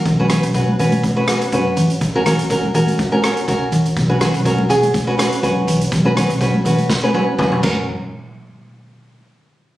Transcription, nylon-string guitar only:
X:1
M:4/4
L:1/16
Q:"Swing 16ths" 1/4=123
K:Blyd
V:1 name="Nylon-string guitar"
z [CFB] [CFB] z [CFB] z [CFB]2 z [CFB] [CFB] z [CFB]3 z | z [CFA] [CFA] z [CFA] z [CFA]2 z [CFA] [CFA] z [CFA]3 z | z [CFB] [CFB] z [CFA] z [CFG]2 z [CFB] [CFB] z [CFB]3 z | z [CFB] [CFB] z [CFB] z [CFB]2 z [CFB] [CFB] z [CFB]2 [CFA]2 |
z16 |]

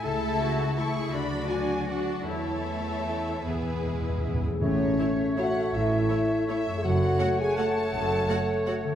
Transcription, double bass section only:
X:1
M:3/4
L:1/8
Q:1/4=161
K:A
V:1 name="Double bass section" clef=bass
C,,6 | D,,6 | E,,6 | E,,4- E,, z |
A,,,2 z4 | A,,,2 z4 | F,,,2 z4 | F,,,2 z4 |]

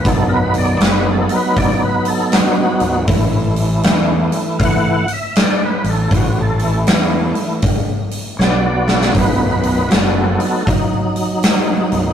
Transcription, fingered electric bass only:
X:1
M:4/4
L:1/8
Q:"Swing" 1/4=79
K:Bmix
V:1 name="Fingered electric bass" clef=bass
B,,,,2 F,,, z4 B,,,, | A,,,2 E,, z4 A,,, | A,,,2 E,, z3 B,,,2 | B,,,,2 F,,, z4 B,,,, |]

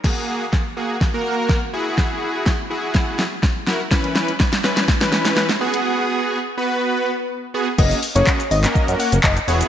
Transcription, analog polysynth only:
X:1
M:4/4
L:1/16
Q:1/4=124
K:F#mix
V:1 name="Analog polysynth"
[A,FG]3 z3 [A,FG]2 z [A,FA]4 z [EFG]2- | [EFG]4 z2 [EFG]4 z4 [EFA] z | [E,CEB]3 z3 [E,CEB]2 z [E,CEB]4 z [B,FG]2- | [B,FG]4 z2 [B,FB]4 z4 [B,FG] z |
[A,CFG]2 z [A,CFG]2 z2 [A,CFA]4 z3 [B,EFG]2 |]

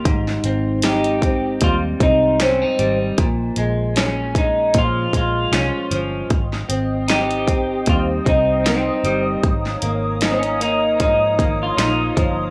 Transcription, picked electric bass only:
X:1
M:4/4
L:1/16
Q:"Swing 16ths" 1/4=77
K:Ab
V:1 name="Picked electric bass" clef=bass
A,,,2 A,,,6 E,,2 C,,4 A,,,2 | B,,,2 B,,,6 B,,2 B,,,2 C,, z G,,,2 | A,,,2 A,,,6 E,,2 C,,4 G,,,2 | A,,,2 A,,,6 A,,2 A,,,2 B,,,2 G,,,2 |]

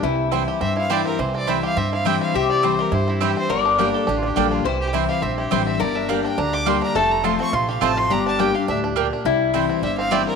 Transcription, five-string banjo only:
X:1
M:4/4
L:1/8
Q:"Swing" 1/4=208
K:Cmix
V:1 name="Five-string banjo"
E,2 E G C E G C | E, C E G C E G C | C E C G E C E C | D, D D G D D G D |
E,2 E G C E G C | G, D G, D D G G, D | A,2 A, C F G A, F | D D D G D D D D |
G,2 G, C G, C E G, |]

